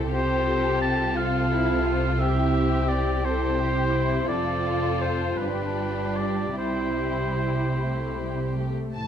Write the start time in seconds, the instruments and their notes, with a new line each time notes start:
Already playing: double bass section C2, cello section C3, viola section C4 E4, violin section G4 A4
0.13 double bass section C2, cello section C3, viola section C4 F4, violin section G4 A4, oboe C5
0.82 oboe A5
1.16 viola section C4 F4, violin section F4 A4, oboe F5
1.52 violin section E4
1.86 violin section F4
2.19 viola section C4 E4, violin section G4, oboe E5
2.88 oboe D5
3.23 viola section C4 E4, violin section G4 A4, oboe C5
3.60 violin section G4
3.95 violin section E4
4.28 double bass section F1, cello section F2, viola section C4 F4, violin section F4 A4, oboe D5
5.01 oboe C5
5.38 double bass section G1, cello section G2, viola section G3 F4, violin section G4, oboe B4
5.42 violin section D4
6.16 oboe D5
6.57 double bass section C2, cello section C3, viola section G3 E4, violin section E4 G4, oboe C5
7.78 viola section A3
8.18 viola section G3
8.57 viola section A3
8.94 double bass section A1, cello section A2, violin section A5